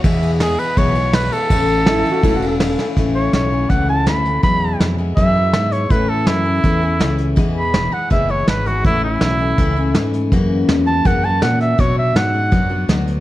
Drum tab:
RD |xxxxxxxx|xxxxxxx-|--------|--------|
HH |--------|--------|x-x-x-xx|x-x-x-xx|
SD |--o---o-|--o---oo|--o---o-|--o---o-|
BD |o---o---|o---o---|o---o---|o---o---|

RD |--------|--------|--------|--------|
HH |x-x-x-xx|x-x-x-xx|x-x-x-xx|x-x-x-xx|
SD |--o---o-|--o---o-|--o---o-|--o---o-|
BD |o---o---|o---o---|o---o---|o---o---|

RD |--------|
HH |x-x-x-xx|
SD |--o---o-|
BD |o---o---|